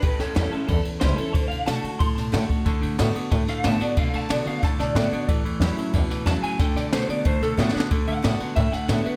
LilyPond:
<<
  \new Staff \with { instrumentName = "Clean electric guitar" } { \time 4/4 \key d \major \tempo 4 = 183 <g' b'>8 <cis' a'>8 <cis' a'>8 <cis' a'>8 a'8 r8 c''8 a'8 | c''8 f''8 a''4 c'''8 a''4.~ | a''4. r4 f''8 a''8 d''8 | f''8 a''8 d''8 f''8 a''8 d''8 d''4 |
r2. a''8 gis''8 | g''8 d''8 c''8 d''8 c''8 a'8 f'8 d'8 | r8 fis''4. e''8 fis''8 e''8 b'8 | }
  \new Staff \with { instrumentName = "Steel-string acoustic guitar" } { \time 4/4 \key d \major << { r4 <e g cis' e'>8 <cis' e'>8 r4 <e g cis' e'>8 <cis' e'>8 | r4 <d a d' fis'>8 <d' fis'>8 r4 <d a d' fis'>8 <d' fis'>8 | r4 <d a d' fis'>8 <d' fis'>8 r4 <d a d' fis'>8 <d' fis'>8 | r4 <d a d' fis'>8 <d' fis'>8 r4 <d a d' fis'>8 <d' fis'>8 |
r4 <e g cis' e'>8 <cis' e'>8 r2 | r4 <d a d' fis'>8 <d' fis'>8 r4 <d a d' fis'>8 <d' fis'>8 | r4 <d a d' fis'>8 <d' fis'>8 r4 <d a d' fis'>8 <d' fis'>8 | } \\ { a,2 e,2 | d2 a,2 | d2 a,2 | d2 a,2 |
a,2 b,4 cis4 | d2 a,2 | d2 a,2 | } >> }
  \new Staff \with { instrumentName = "Clean electric guitar" } { \clef bass \time 4/4 \key d \major r1 | r1 | <d a>8 <d a>8 <d b>8 <d b>8 <d a>8 <d a>8 <d b>8 <d b>8 | <d a>8 <d a>8 <d b>8 <d b>8 <d a>8 <d a>8 <d b>8 <d b>8 |
<a, e>8 <a, e>8 <a, fis>8 <a, fis>8 <a, e>8 <a, e>8 <a, fis>8 <a, fis>8 | <d a>8 <d a>8 <d b>8 <d b>8 <d a>8 <d a>8 <d b>8 <d b>8 | <d a>8 <d a>8 <d b>8 <d b>8 <d a>8 <d a>8 <d b>8 <d b>8 | }
  \new Staff \with { instrumentName = "Upright bass" } { \clef bass \time 4/4 \key d \major a,,8 e,8 e,8 r8 e,8 r8 cis,8 r8 | d,8 b,8 b,8 d8 d8 b,8 a,8 r8 | d,8 a,8 a,8 r8 a,8 r8 a,8 r8 | b,8 b,8 b,8 d8 d8 b,8 a,8 r8 |
a,,8 e,8 e,8 r8 e,8 r8 e,8 r8 | d,8 b,8 b,8 d8 d8 b,8 a,8 r8 | d,8 a,8 a,8 r8 a,8 r8 a,8 r8 | }
  \new DrumStaff \with { instrumentName = "Drums" } \drummode { \time 4/4 <bd cymr sn>8 <cymr sn>8 <cymr sn>8 cymr8 <bd cymr>8 cymr8 <cymr sn>8 cymr8 | <bd cymr>8 cymr8 <cymr sn>8 cymr8 <bd cymr>8 <cymr sn>8 <cymr sn>8 <bd cymr>8 | <bd cymr sn>8 cymr8 <cymr sn>8 cymr8 <bd cymr sn>8 <cymr sn>8 <cymr sn>8 cymr8 | <bd cymr>8 cymr8 <cymr sn>8 cymr8 <bd cymr sn>8 <cymr sn>8 <cymr sn>8 cymr8 |
<bd cymr>8 cymr8 <cymr sn>8 cymr8 <bd cymr sn>8 <cymr sn>8 <cymr sn>8 cymr8 | <bd cymr sn>8 <cymr sn>8 <cymr sn>8 cymr8 <bd cymr>8 <cymr sn>8 \tuplet 3/2 { sn8 sn8 sn8 } | <bd cymr sn>8 cymr8 <cymr sn>8 cymr8 <bd cymr sn>8 <cymr sn>8 <cymr sn>8 cymr8 | }
>>